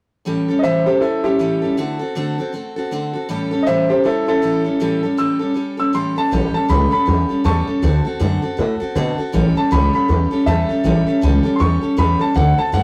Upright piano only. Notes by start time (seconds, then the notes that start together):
0.59 C5 D#5
0.64 E5
0.86 G4 C5
1.01 E4 A4
1.24 E4 G4
3.63 D#5
3.67 C5 E5
3.89 G4 C5
4.05 E4 A4
4.28 E4 A4
5.18 E6
5.80 E6
5.95 C6
6.18 A5
6.54 A5
6.69 B5
6.92 B5
7.45 A5 C#6
9.57 A5
9.72 B5
9.95 B5
10.46 E5 A5
11.56 C6
11.60 C#6
11.98 B5
12.21 A5
12.36 F#5
12.58 A5
12.74 F#5